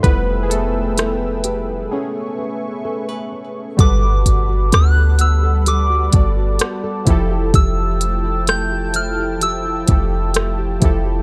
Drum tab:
HH |xxxx----|xxxxxxxx|xxxxxxxx|
SD |--r-----|--r---r-|--r---r-|
BD |o-------|o----o-o|o----o-o|